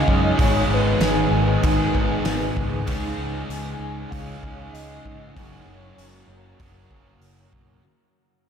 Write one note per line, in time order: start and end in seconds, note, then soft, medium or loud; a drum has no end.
0.00 0.35 C#3 medium
0.00 0.36 C#3 medium
0.00 0.38 G#3 medium
0.00 0.42 G#3 medium
0.00 0.36 C#4 medium
0.00 0.38 C#4 medium
0.00 0.39 D#4 medium
0.00 5.32 D#4 medium
0.00 0.39 G#4 medium
0.00 5.33 G#4 medium
0.00 0.34 C#5 medium
0.00 0.42 D#5 medium
0.00 2.84 G#5 medium
0.08 0.32 F#2 medium
0.08 kick medium
0.37 0.63 G#1 medium
0.37 1.60 G#2 medium
0.37 1.60 D#3 medium
0.37 1.64 G#3 medium
0.37 1.61 B3 medium
0.37 1.65 D#4 loud
0.37 1.66 G#4 medium
0.37 2.85 B4 medium
0.37 kick loud
0.37 open hi-hat soft
0.41 2.87 G#3 medium
0.41 0.75 C#5 loud
0.69 0.94 G#1 medium
0.73 1.33 B4 medium
1.00 1.25 G#1 medium
1.00 snare loud
1.00 open hi-hat soft
1.31 1.56 G#1 medium
1.63 1.87 G#1 medium
1.63 2.85 G#2 medium
1.63 2.85 D#3 medium
1.63 2.86 G#3 medium
1.63 2.86 B3 medium
1.63 2.86 D#4 medium
1.63 2.87 G#4 medium
1.63 kick loud
1.63 open hi-hat medium
1.95 2.19 G#1 medium
1.95 kick medium
2.24 2.49 G#1 medium
2.24 snare loud
2.24 open hi-hat medium
2.57 2.81 C#2 medium
2.57 kick medium
2.87 3.12 C#2 medium
2.87 4.09 C#3 medium
2.87 4.09 G#3 medium
2.87 4.12 C#4 medium
2.87 4.10 D#4 loud
2.87 4.10 G#4 medium
2.87 5.33 C#5 medium
2.87 5.33 G#5 medium
2.87 kick loud
2.87 open hi-hat medium
3.18 3.42 C#2 medium
3.49 3.73 C#2 medium
3.49 4.11 G#5 loud
3.49 open hi-hat soft
3.79 4.04 C#2 medium
4.10 4.36 C#2 medium
4.10 5.34 C#3 medium
4.10 5.34 G#3 medium
4.10 5.38 C#4 medium
4.10 5.34 D#4 medium
4.10 4.74 F5 loud
4.10 kick loud
4.10 open hi-hat medium
4.14 5.35 G#4 medium
4.43 4.67 C#2 medium
4.43 kick medium
4.72 4.97 C#2 medium
4.72 5.34 D#5 medium
4.72 open hi-hat medium
5.05 5.29 G#2 medium
5.05 kick medium
5.35 5.60 F#1 loud
5.35 6.58 F#2 medium
5.35 6.58 C#3 medium
5.35 6.58 F#3 medium
5.35 6.59 A#3 medium
5.35 6.59 C#4 medium
5.35 7.82 F#4 medium
5.35 6.59 F#4 medium
5.35 7.81 A#4 medium
5.35 7.17 C#5 medium
5.35 7.82 C#5 medium
5.35 7.81 A#5 medium
5.35 kick medium
5.35 open hi-hat soft
5.66 5.91 F#1 medium
5.98 6.22 F#1 medium
5.98 open hi-hat soft
6.28 6.52 F#1 medium
6.59 6.84 F#1 medium
6.59 7.81 F#2 medium
6.59 7.82 C#3 medium
6.59 7.82 F#3 medium
6.59 7.82 A#3 medium
6.59 7.82 C#4 medium
6.59 7.83 F#4 medium
6.59 kick loud
6.59 open hi-hat soft
6.91 7.15 F#1 medium
6.91 kick medium
7.21 7.45 F#1 medium
7.21 open hi-hat soft
7.53 7.77 B1 medium
7.53 kick medium